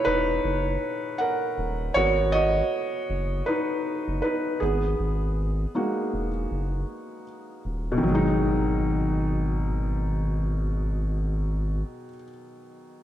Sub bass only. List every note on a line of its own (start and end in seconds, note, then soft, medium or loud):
0.06 0.39 E1 medium
0.44 0.77 F#1 loud
1.58 1.91 D#1 loud
1.96 2.62 G#1 loud
3.10 3.43 F#1 loud
4.08 4.22 F#1 medium
4.62 4.95 G#1 loud
5.00 5.66 G#1 loud
6.14 6.46 E1 medium
6.51 6.84 F#1 loud
7.65 7.98 D#1 medium
8.03 11.83 G#1 medium